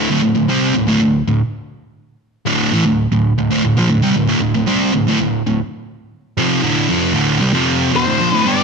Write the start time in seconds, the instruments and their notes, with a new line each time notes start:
0.10 distorted electric guitar D2 A2
0.22 distorted electric guitar D2 A2
0.35 distorted electric guitar D2 A2
0.48 distorted electric guitar C3 G3 C4
0.74 distorted electric guitar D2 A2
0.87 distorted electric guitar D2 A2
1.01 distorted electric guitar D2 A2
1.28 distorted electric guitar D2 A2
2.46 distorted electric guitar D2 A2 D3
2.72 distorted electric guitar A2 E3
2.85 distorted electric guitar D2 A2
3.12 distorted electric guitar D2 A2
3.38 distorted electric guitar D2 A2
3.51 distorted electric guitar D2 A2
3.64 distorted electric guitar D2 A2
3.77 distorted electric guitar A#2 F3
3.90 distorted electric guitar D2 A2
4.02 distorted electric guitar C3 G3
4.16 distorted electric guitar D2 A2
4.28 distorted electric guitar D2 A2
4.41 distorted electric guitar D2 A2
4.55 distorted electric guitar D2 A2
4.67 distorted electric guitar C3 G3 C4
4.94 distorted electric guitar D2 A2
5.08 distorted electric guitar D2 A2
5.20 distorted electric guitar D2 A2
5.46 distorted electric guitar D2 A2
6.37 distorted electric guitar F2 C3 F3
6.62 distorted electric guitar D2 A2 D3
6.89 distorted electric guitar F2 C3 F3
7.14 distorted electric guitar D2 A2 D3
7.40 distorted electric guitar C3 G3
7.53 distorted electric guitar F2 C3 F3
7.93 distorted electric guitar E2 B2, lead electric guitar C5
8.06 distorted electric guitar D2 A2
8.19 distorted electric guitar A#2 F3
8.33 distorted electric guitar D2 A2, lead electric guitar B4
8.45 distorted electric guitar G2 D3 G3 B3 D4 G4, lead electric guitar D5